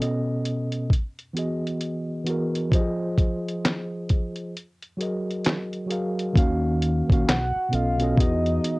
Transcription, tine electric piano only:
Already playing: B2
0.00 B3 C#4 A4 D#5
1.33 E3 B3 F#4
1.38 G#4 D#5
2.24 E3 B3 F#4
2.28 G#4 A#4
2.69 F3 F4 G4
2.74 C5 D#5
2.79 G#4
4.97 F#3 F#4 G#4 A#4
5.02 D#5
5.86 F#3 F#4 G#4
5.90 A#4 F5
6.33 D#3 A#3 C#4 F#4
6.38 F5
7.08 D#3 A#3 C#4
7.12 F#4 F5
7.69 B2 B3 C#4
7.73 A4 D#5
7.98 B2 B3 C#4
8.02 A4 D#5
8.17 E3 B3 F#4
8.21 G#4 D#5

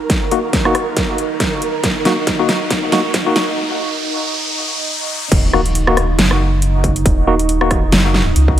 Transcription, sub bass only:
0.10 D#1
0.53 D#1
5.32 D#1
6.19 F#1
7.06 D#1
7.92 F#1
8.36 C#2

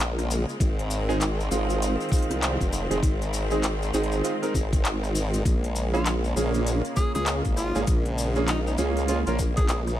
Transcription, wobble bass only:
Already playing: A#1
0.60 G#1
1.51 G#1
2.30 C2
2.61 F1
2.90 F1
3.02 G#1
3.94 G#1
4.54 G#1
5.45 A#1
6.36 A#1
7.15 C#2
7.45 G#1
7.75 G#1
7.88 A#1
8.78 C#2
9.27 A#1

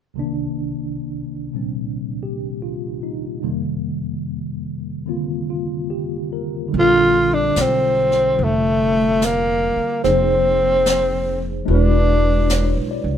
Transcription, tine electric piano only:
0.14 C2 C3 D#3 A#3
0.19 D4
1.53 A#2 C3 G3 C4
2.23 G4
2.62 F4
3.03 D#4
3.42 F2 C3 D#3 G3 A#3
5.06 D3 A#3 C4 F4
5.50 F4
5.90 G4
6.33 A#4
6.68 D3 G3
6.75 C4 F4
6.79 A4
10.03 F3 A#3 D#4 G#4 C5
11.65 G#3 D4 E4 F#4
11.71 B4
12.52 C#5
12.91 D5

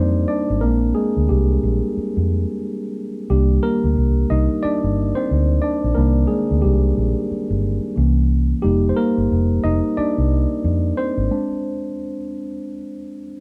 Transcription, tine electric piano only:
Already playing: G3 A#3 C4 D4 D#4 A#4 C5 D5 D#5
0.28 D4 D5
0.61 G#3 A#3 C4 D4 A#4
0.95 G#3 G#4
1.29 G3 G4
3.30 D#3 G3 A#3 D4 G4
3.63 A#3 A#4
4.30 D#4 D#5
4.63 D4 D5
5.15 C4 C5
5.62 D4 D5
5.95 D#3 A#3 D4 A#4
6.27 G#3 G#4
6.62 G3 G4
7.96 E3 A#3 C#4
8.62 G3 A#3 D#4 G4
8.89 C5
8.97 A#3 A#4
9.64 D#4 D#5
9.97 D4 D5
10.97 C4 C5
11.30 G#3 C4 D4

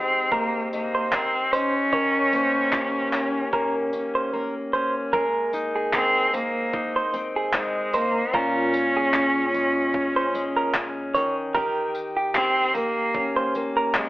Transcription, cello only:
Already playing: C4
0.31 A#3
0.73 A#3
1.12 C4
1.52 C#4
5.94 C4
6.34 A#3
7.55 G#3
7.94 A#3
8.33 C#4
12.35 C4
12.74 A#3
13.95 G#3

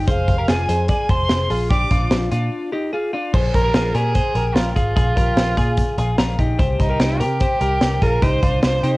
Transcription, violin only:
0.09 F5
0.50 G#5
0.90 G#5
1.10 C6
1.71 D6
3.55 A#4
3.95 G#4
4.54 F4
4.74 F4
6.80 D#4
7.21 G4
8.02 A#4
8.23 C5
8.64 C5

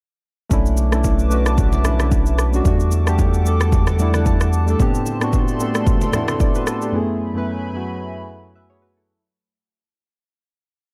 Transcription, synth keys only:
0.49 A3 C#4 D4 E4
0.91 A3 C#4 D4 E4
1.30 A3 C#4 D4 F#4
1.83 A3 C#4 D4 E4
2.52 A3 C#4 D4 F#4
2.64 G3 A3 D4 F#4
3.05 G3 A3 D4 G4
3.44 G3 A3 D4 A4
3.98 G3 A3 D4 E4 D5
4.15 F#5
4.27 A5
4.66 G3 A3 D4 A4
4.78 A2 B3 C4 D4 G4
5.20 A2 B3 C4 D4 F#4
5.59 A2 B3 C4 D4 A4
6.12 A2 B3 C4 D4 E4
6.41 A4 D5
6.56 F#4 B4
6.67 E4 A4
6.82 D4 G4
6.92 F#2 A3 B3 E4 G#4
7.34 F#2 A3 B3 E4 B4
7.73 F#2 A3 B3 E4 F#4
8.55 B4 E5
8.70 G#4 C#5
8.82 F#4 B4
8.97 E4 A4

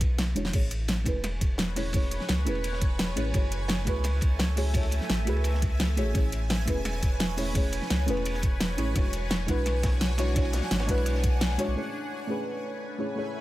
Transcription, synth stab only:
Already playing: G#3 D4 E4 F#4 B4 C#5
0.35 G#3 D4 E4 F#4 C#5
0.51 A3 C#4 E4 G#4
0.55 C#5
1.04 A3 C#4 E4 G#4
1.08 B4
1.76 A3 C#4 E4 G#4 C#5
1.92 A3 C#4 E4 G#4
1.96 C#5
2.45 A3 C#4 E4 G#4
2.49 B4
3.16 A3 C#4 E4 G#4 C#5
3.32 A3 E4 F#4 G#4
3.36 C#5
3.85 A3 E4 F#4 G#4
3.89 B4
4.56 A3 E4 F#4 G#4 C#5
4.73 A3 E4 F#4 G#4 C#5
5.25 A3 E4 F#4 G#4
5.29 B4
5.96 A3 E4 F#4 G#4 C#5
6.13 A3 C#4 E4 G#4
6.17 C#5
6.65 A3 C#4 E4 G#4
6.69 B4
7.37 A3 C#4 E4 G#4 C#5
7.53 A3 C#4 E4 G#4
7.57 C#5
8.06 A3 C#4 E4 G#4 B4
8.77 A3 C#4 E4 G#4 C#5
8.93 G#3 D4 E4 F#4
8.98 C#5
9.46 G#3 D4 E4 F#4
9.50 B4
10.17 G#3 D4 E4 F#4 C#5
10.34 G#3 D4 E4 F#4
10.38 C#5
10.86 G#3 D4 E4 F#4
10.90 B4
11.58 G#3 D4 E4 F#4 C#5
11.74 A3 C#4 E4 G#4
11.79 C#5
12.27 A3 C#4 E4 G#4
12.31 B4
12.98 A3 C#4 E4 G#4 C#5
13.15 A3 C#4 E4 G#4
13.19 C#5

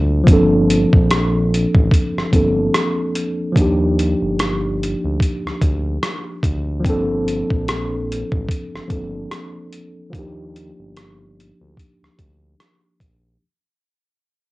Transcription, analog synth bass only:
Already playing: D2
0.27 G1
0.93 A#1
1.75 A1
2.17 G1
2.33 G1
3.56 D#2
4.22 G1
5.04 D2
5.46 D2
5.62 D2
6.43 D2
6.85 G1
7.51 A#1
8.32 A1
8.74 G1
8.90 G1
10.13 D#2
10.79 G1
11.61 D2
12.02 D2
12.19 D2
13.01 A#1

